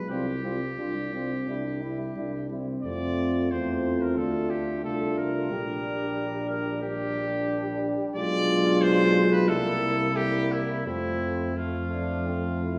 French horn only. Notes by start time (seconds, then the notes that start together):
0.09 C4
0.44 C4
0.79 D4
1.13 C4
1.48 D4
1.83 E4
2.17 D4
2.51 C4
2.85 C4
3.52 C4
4.18 D4
4.85 D4
5.51 D4
6.84 D4
8.16 D4
9.48 A#3
10.15 A#3
10.85 A3
11.57 A3